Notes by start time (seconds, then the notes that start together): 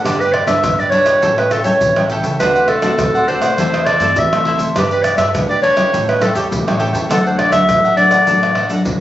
Already playing: G3 B3 D4
0.04 G1 G2 D4 G4 B4, pandeiro, tamborim, shaker, surdo
0.08 D5
0.20 B4 D5, pandeiro, shaker
0.24 G4
0.33 D5, pandeiro, tamborim
0.47 G1 G3 B3 D4 G4 B4 D5 E5, pandeiro, tamborim, shaker, surdo
0.64 G1 D3, pandeiro, tamborim, shaker, surdo
0.79 G4 B4 D5, pandeiro, shaker
0.90 G3 B3 D4 G4 B4 C#5, pandeiro
0.95 D5
1.06 G4 B4 D5, pandeiro, tamborim, shaker, surdo
1.22 A1 A2 G3 C#4 E4 G4 A4 C#5 G5, pandeiro, shaker, surdo
1.38 B4, pandeiro, tamborim, shaker
1.51 G4 A4 C#5 G5, pandeiro, tamborim, shaker
1.64 E2 G3 C#4 E4 G4 A4 C#5 G5, pandeiro, shaker, surdo
1.81 A1 E3, pandeiro, shaker, surdo
1.96 G3 C#4 E4 A4 C#5 G5, pandeiro, tamborim, shaker
2.10 G4 A4 C#5 G5, pandeiro
2.23 C#2 A4 C#5 G5, pandeiro, shaker, surdo
2.39 D2 D3 A3 C4 D4 F#4 B4 C5 D5 F#5, pandeiro, tamborim, shaker, surdo
2.55 C5 D5 F#5, pandeiro, shaker
2.68 A4, pandeiro, tamborim
2.82 D2 A3 C4 D4 F#4 C5 D5 F#5, pandeiro, tamborim, shaker, surdo
2.99 D2 A2, pandeiro, tamborim, shaker, surdo
3.15 C5 D5 F#5, pandeiro, shaker
3.28 A3 C4 D4 F#4 C5 D5 F#5, pandeiro
3.42 C5 D5 F#5, pandeiro, tamborim, shaker, surdo
3.58 E2 E3 A3 C4 E4 G4 A4 C5 E5, pandeiro, shaker, surdo
3.74 pandeiro, tamborim, shaker
3.86 E4 A4 C5 D5 E5, pandeiro, tamborim
4.00 G2 A3 C4 E4 G4 A4 C5 E5, pandeiro, shaker, surdo
4.16 E2 E3 E5, pandeiro, shaker, surdo
4.33 A3 C4 G4 A4 C5 E5, pandeiro, tamborim, shaker
4.45 E4 A4 C5 E5, pandeiro
4.58 D2 A4 C5 E5, pandeiro, shaker, surdo
4.76 G2 G3 D4 G4 B4 D5, pandeiro, tamborim, shaker, surdo
4.91 G4 B4 D5, pandeiro, shaker
5.03 D5, pandeiro, tamborim, shaker, surdo
5.18 G2 D4 G4 B4 D5 E5, pandeiro, tamborim, shaker, surdo
5.35 D2 D3 D4 G4 B4, pandeiro, tamborim, shaker, surdo
5.49 G4 B4 D5, pandeiro, shaker
5.62 D4 G4 B4 C#5 D5, pandeiro
5.76 G3 C#4 E4 G4 B4 D5, pandeiro, tamborim, shaker, surdo
5.93 A2 G4 A4 C#5 G5, pandeiro, shaker, surdo
6.09 B4, pandeiro, tamborim, shaker
6.22 G3 C#4 E4 G4 A4 C#5 G5, pandeiro, tamborim, shaker
6.35 E2 G4 A4 C#5 G5, pandeiro, shaker, surdo
6.51 A2 E3, pandeiro, shaker, surdo
6.67 G3 C#4 E4 A4 C#5 G5, pandeiro, tamborim, shaker
6.79 G4 A4 C#5 G5, pandeiro
6.93 E2 A4 C#5 G5, pandeiro, shaker, surdo
7.09 D2 D3 F#3 A3 D4 A4 D5 F#5, pandeiro, tamborim, shaker, surdo
7.25 A4 C5 D5 F#5, pandeiro, shaker
7.39 D5, pandeiro, tamborim, surdo
7.52 D2 F#3 A3 D4 A4 D5 E5 F#5, pandeiro, tamborim, shaker, surdo
7.68 A1 A2, pandeiro, tamborim, shaker, surdo
7.84 A4 D5 F#5, pandeiro, shaker
7.96 F#3 A3 D4 A4 D5 F#5, pandeiro
8.11 A4 D5 F#5, pandeiro, tamborim, shaker, surdo
8.26 A1 D3 F#3 A3 D4 A4 D5 F#5, pandeiro, shaker, surdo
8.43 pandeiro, tamborim, shaker
8.55 D4 A4 D5 F#5, pandeiro, tamborim
8.69 A1 F#3 A3 D4 A4 D5 F#5, pandeiro, shaker, surdo
8.85 D2 A2, pandeiro, shaker, surdo